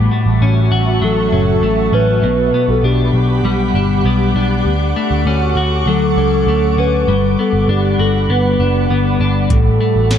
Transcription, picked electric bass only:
0.26 A1
0.41 A1
0.72 A1
1.02 A1
1.32 F#1
1.62 A1
1.92 A1
2.23 B1
2.68 B1
2.83 B1
3.13 B1
3.44 B1
3.74 G1
4.04 B1
4.35 B1
4.65 D2
5.11 D2
5.26 D2
5.56 D2
5.86 D2
6.16 C#2
6.47 D2
6.77 D2
7.08 G1
7.53 G1
7.68 G1
7.99 G1
8.29 G1
8.59 F#1
8.90 G1
9.20 G1
9.50 A1
9.96 A1
10.10 A1

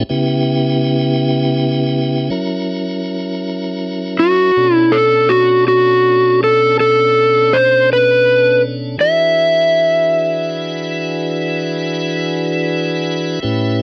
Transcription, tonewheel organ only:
0.09 C#3 B3 E4 G4
2.30 F#3 C#4 E4 A#4
4.56 B2 C#4 D4 A4
8.98 E3 D4 F#4 G#4 B4
13.42 A2 C#4 E4 G4 B4

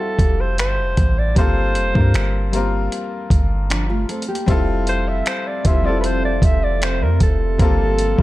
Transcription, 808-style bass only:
0.19 F1
0.58 G1
0.78 F1
0.98 A1
1.36 G1
1.75 F1
1.95 G2
2.14 G1
3.30 G1
4.48 F1
5.65 F1
6.42 F1
7.01 F2
7.21 F1
7.59 G1
8.19 G1

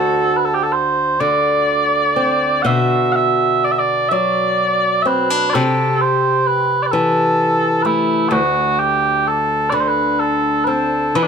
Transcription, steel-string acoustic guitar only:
Already playing: D2 C4 F#4
1.20 D3
2.16 C4
2.65 B2 F#4
4.11 F#3
5.05 C4
5.30 D4
5.55 C3 G4
6.93 E3
7.85 A3
8.31 D2
9.72 D3
10.67 C4
11.15 E3

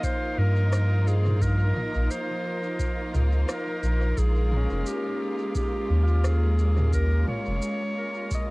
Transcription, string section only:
Already playing: F3 A#3 C#4 D#4 F4 A#4
4.17 G#3
4.43 C#4

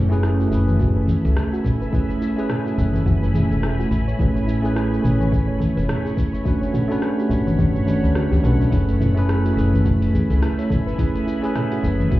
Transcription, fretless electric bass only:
Already playing: F#1
0.52 F#1
1.25 C#2
2.78 F#1
3.06 F#1
3.51 E1
3.91 A1
4.19 A1
5.04 A1
5.77 E1
7.30 G1
7.59 G1
8.04 D2
8.32 D2
8.44 B1
8.72 F#1
9.57 F#1
10.30 C#2
11.83 F#1
12.12 F#1

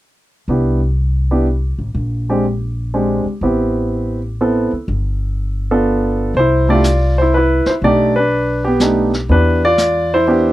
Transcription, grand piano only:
0.49 B3 D4 E4 G4
1.31 B3 D4 E4 G4
2.29 G#3 C4 D4 G4
2.94 G#3 C4 D4 G4
3.43 B3 C4 E4 G4
4.41 B3 C4 E4 A4
5.71 B3 D4 F4 A4
6.37 E4 C5
6.69 A3 D4 E4 F4 G4 D5
7.18 E4 C5
7.34 E4 B4
7.67 E4 C5
7.84 A3 D4 D#4 G4 D5
8.16 D4 B4
8.65 B3 G4
8.81 A3 D4 D#4 G4
9.29 B3 D4 E4 G4 B4
9.65 F4 D5
10.14 E4 C5
10.28 B3 D4 E4 G4

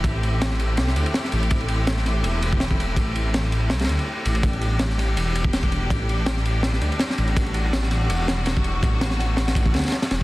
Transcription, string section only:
Already playing: A3 C4 E4 G4
4.44 G3 B3 D4 G4
7.36 F#4

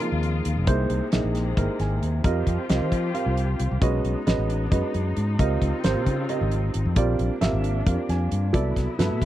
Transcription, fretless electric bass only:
0.12 D#2
0.46 D#2
0.57 F1
0.68 C2
0.90 C2
1.13 A#1
1.24 A#1
1.57 G#1
1.79 G#1
2.02 D#2
2.25 F2
2.47 F2
2.70 C2
2.82 D#3
2.92 F3
3.26 C2
3.60 C2
3.71 C2
3.82 B1
4.04 B1
4.27 A1
4.38 A1
4.72 F#2
4.94 F#2
5.17 G#2
5.40 C#2
5.61 C#2
5.84 G#1
5.95 A#2
6.07 C#3
6.41 G#1
6.75 G#1
6.85 F2
6.96 A#1
7.19 A#1
7.41 G#1
7.53 G#1
7.86 F2
8.09 F2
8.32 G2
8.54 C2
8.77 C2
8.99 G2
9.11 A2
9.22 C3

